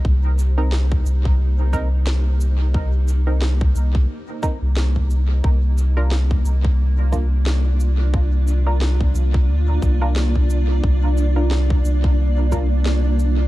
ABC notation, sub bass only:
X:1
M:4/4
L:1/16
Q:"Swing 16ths" 1/4=89
K:Bbmix
V:1 name="Sub bass" clef=bass
C,,6 C,,8- C,,2- | C,,6 C,,2 z3 C,,4- C,, | C,,6 C,,8- C,,2- | C,,6 C,,2 D,,2 C,,6 |
C,,6 C,,8- C,,2 |]